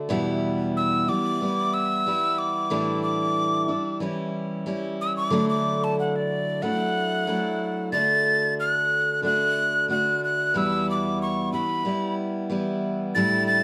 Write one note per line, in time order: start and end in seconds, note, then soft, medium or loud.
0.00 0.10 D4 medium
0.00 0.10 F#4 medium
0.09 1.07 E2 medium
0.09 1.08 B2 medium
0.09 1.10 E3 medium
0.09 1.09 G3 medium
0.09 1.08 B3 medium
0.09 1.07 E4 medium
0.77 1.10 E6 medium
1.08 1.40 E3 soft
1.08 1.41 G3 soft
1.08 1.41 B3 soft
1.08 1.41 E4 soft
1.08 1.75 D6 medium
1.41 2.06 E3 medium
1.41 2.06 G3 medium
1.41 2.06 B3 medium
1.41 2.08 E4 medium
1.74 2.40 E6 loud
2.06 2.70 E3 medium
2.06 2.70 G3 medium
2.06 2.71 B3 medium
2.06 2.71 E4 medium
2.38 3.02 D6 medium
2.70 3.68 A2 medium
2.70 3.72 E3 medium
2.70 3.69 G3 medium
2.70 3.68 D4 medium
2.70 3.68 E4 medium
3.03 3.98 D6 loud
3.68 4.00 G3 soft
3.68 4.02 D4 soft
3.68 4.01 E4 soft
4.00 4.65 E3 medium
4.00 4.65 G3 medium
4.00 4.66 C#4 medium
4.00 4.67 E4 medium
4.66 5.31 E3 medium
4.66 5.32 G3 medium
4.66 5.32 C#4 medium
4.66 5.33 E4 medium
5.01 5.16 E6 medium
5.17 5.48 D6 medium
5.30 6.62 D3 medium
5.30 6.61 F#3 medium
5.30 6.62 A3 medium
5.30 6.63 D4 medium
5.30 6.64 E4 medium
5.49 5.85 D6 medium
5.84 5.98 A5 medium
6.00 6.17 F#5 medium
6.16 6.64 D5 medium
6.62 7.26 F#3 medium
6.62 7.26 A3 medium
6.62 7.28 D4 medium
6.62 7.28 E4 medium
6.62 7.89 F#5 loud
7.27 7.92 F#3 medium
7.27 7.92 A3 medium
7.27 7.94 D4 medium
7.27 7.94 E4 medium
7.92 9.21 D3 medium
7.92 9.22 A3 medium
7.92 9.23 D4 medium
7.92 9.24 F#4 medium
7.92 8.54 A6 loud
8.60 9.21 F#6 medium
9.22 9.87 D3 medium
9.22 9.88 A3 medium
9.22 9.89 D4 medium
9.22 9.89 F#4 medium
9.22 9.86 F#6 medium
9.88 10.54 D3 soft
9.88 10.55 A3 medium
9.88 10.55 D4 medium
9.88 10.55 F#4 medium
9.88 10.21 F#6 medium
10.24 10.59 F#6 medium
10.54 11.53 E2 medium
10.54 11.53 B2 medium
10.54 11.54 E3 medium
10.54 11.53 G3 medium
10.54 11.52 B3 medium
10.54 11.52 E4 medium
10.54 10.89 E6 medium
10.91 11.20 D6 medium
11.22 11.52 C#6 medium
11.53 11.84 E3 soft
11.53 11.84 G3 soft
11.53 11.85 B3 soft
11.53 11.86 E4 soft
11.53 12.15 B5 medium
11.85 12.49 E3 medium
11.85 12.49 G3 medium
11.85 12.50 B3 medium
11.85 12.51 E4 medium
12.50 13.15 E3 medium
12.50 13.16 G3 medium
12.50 13.16 B3 medium
12.50 13.17 E4 medium
13.15 13.63 A2 medium
13.15 13.63 D3 medium
13.15 13.63 G3 medium
13.15 13.63 D4 medium
13.15 13.63 E4 medium
13.15 13.46 A6 loud
13.48 13.63 A6 medium